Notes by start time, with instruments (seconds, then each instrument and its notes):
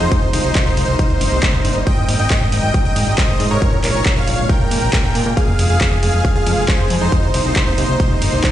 0.00 analog synth bass F2, supersaw synth D#4 C5
0.12 kick, closed hi-hat
0.22 analog synth bass C2, closed hi-hat
0.33 analog synth bass C2, supersaw synth D#4 C5, open hi-hat, ride
0.44 analog synth bass C2
0.55 kick, clap, closed hi-hat
0.66 analog synth bass C2, supersaw synth D#4 C5, closed hi-hat
0.77 analog synth bass C2, open hi-hat, ride
0.88 analog synth bass C2, closed hi-hat
0.99 supersaw synth D#4 C5, kick, closed hi-hat
1.10 analog synth bass C2, closed hi-hat
1.21 analog synth bass G1, open hi-hat, ride
1.32 analog synth bass C2, closed hi-hat
1.43 kick, clap, closed hi-hat
1.54 analog synth bass C2, closed hi-hat
1.65 analog synth bass G1, open hi-hat, ride
1.76 analog synth bass G1, closed hi-hat
1.87 supersaw synth D#5 G5, kick, closed hi-hat
1.98 analog synth bass G#1, closed hi-hat
2.09 analog synth bass G#1, open hi-hat, ride
2.19 analog synth bass G#1, supersaw synth D#5 G5, closed hi-hat
2.30 kick, clap, closed hi-hat
2.41 analog synth bass G#1, closed hi-hat
2.52 analog synth bass G#1, supersaw synth D#5 G5, open hi-hat, ride
2.63 analog synth bass G#1
2.74 kick, closed hi-hat
2.85 analog synth bass G#1, supersaw synth D#5 G5, closed hi-hat
2.96 analog synth bass G#2, open hi-hat, ride
3.07 analog synth bass G#1, closed hi-hat
3.18 supersaw synth C5 D#5, kick, clap, closed hi-hat
3.29 analog synth bass G#1, closed hi-hat
3.40 analog synth bass G#2, open hi-hat, ride
3.51 analog synth bass G#2, supersaw synth A#4 C#5
3.62 kick, closed hi-hat
3.73 analog synth bass A#1, closed hi-hat
3.84 analog synth bass A#1, supersaw synth A#4 C#5, clap, open hi-hat, ride
3.95 analog synth bass A#1, closed hi-hat
4.06 kick, clap, closed hi-hat
4.17 analog synth bass A#1, supersaw synth C#5 F5, closed hi-hat
4.27 analog synth bass A#1, open hi-hat, ride
4.38 analog synth bass A#1, closed hi-hat
4.49 supersaw synth A#4 G5, kick, closed hi-hat
4.60 analog synth bass A#1, closed hi-hat
4.71 analog synth bass A#2, open hi-hat, ride
4.82 analog synth bass A#1, closed hi-hat
4.93 kick, clap, closed hi-hat
5.04 analog synth bass A#1, closed hi-hat
5.15 analog synth bass A#2, open hi-hat, ride
5.26 analog synth bass A#2, closed hi-hat
5.37 supersaw synth G#4 F5, kick, closed hi-hat
5.48 analog synth bass F1, closed hi-hat
5.59 analog synth bass F1, open hi-hat, ride
5.70 analog synth bass F1, supersaw synth G#4 F5, closed hi-hat
5.81 kick, clap, closed hi-hat
5.92 analog synth bass F1, closed hi-hat
6.03 analog synth bass F1, supersaw synth G#4 F5, open hi-hat, ride
6.14 analog synth bass F1, closed hi-hat
6.25 kick, closed hi-hat
6.36 analog synth bass F1, supersaw synth G#4 F5, closed hi-hat
6.47 analog synth bass F2, open hi-hat, ride
6.58 analog synth bass F1
6.68 supersaw synth C5, kick, clap, closed hi-hat
6.79 analog synth bass F1, closed hi-hat
6.90 analog synth bass F2, open hi-hat, ride
7.01 analog synth bass F2, supersaw synth D#4 C5, closed hi-hat
7.12 kick, closed hi-hat
7.23 analog synth bass C2, closed hi-hat
7.34 analog synth bass C2, supersaw synth D#4 C5, open hi-hat, ride
7.45 analog synth bass C2, closed hi-hat
7.56 kick, clap, closed hi-hat
7.67 analog synth bass C2, supersaw synth D#4 C5, closed hi-hat
7.78 analog synth bass C2, open hi-hat, ride
7.89 analog synth bass C2, closed hi-hat
8.00 supersaw synth D#4 C5, kick, closed hi-hat
8.11 analog synth bass C2, closed hi-hat
8.22 analog synth bass G1, open hi-hat, ride
8.33 analog synth bass C2, closed hi-hat
8.44 kick, clap, closed hi-hat